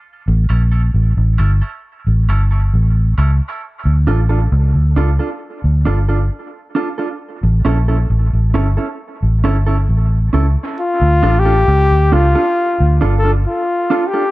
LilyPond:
<<
  \new Staff \with { instrumentName = "Flugelhorn" } { \time 4/4 \key d \minor \tempo 4 = 67 r1 | r1 | r1 | \tuplet 3/2 { f'4 g'8~ } g'8 f'8~ \tuplet 3/2 { f'8. r16 a'8 f'4 g'8 } | }
  \new Staff \with { instrumentName = "Clean electric guitar" } { \time 4/4 \key d \minor r8 <cis' e' a'>16 <cis' e' a'>16 r8 <cis' e' a'>16 <cis' e' a'>16 r8 <cis' e' a'>16 <cis' e' a'>16 r8 <cis' e' a'>16 r16 | r8 <d' f' a'>16 <d' f' a'>16 r8 <d' f' a'>16 <d' f' a'>16 r8 <d' f' a'>16 <d' f' a'>16 r8 <d' f' a'>16 <d' f' a'>16 | r8 <cis' e' a'>16 <cis' e' a'>16 r8 <cis' e' a'>16 <cis' e' a'>16 r8 <cis' e' a'>16 <cis' e' a'>16 r8 <cis' e' a'>16 r16 | r8 <d' f' a'>16 <d' f' a'>16 r8 <d' f' a'>16 <d' f' a'>16 r8 <d' f' a'>16 <d' f' a'>16 r8 <d' f' a'>16 <d' f' a'>16 | }
  \new Staff \with { instrumentName = "Fingered electric bass" } { \clef bass \time 4/4 \key d \minor r16 a,,16 bes,,8 a,,16 a,,16 g,,16 r8 a,,16 g,,8 a,,8 cis,16 r16 | r16 d,16 a,,8 cis,16 d,16 cis,16 r8 d,16 g,,8 r4 | r16 a,,16 bes,,8 a,,16 a,,16 g,,16 r8 a,,16 g,,8 a,,8 cis,16 r16 | r16 d,16 a,,8 cis,16 d,16 cis,16 r8 d,16 g,,8 r4 | }
>>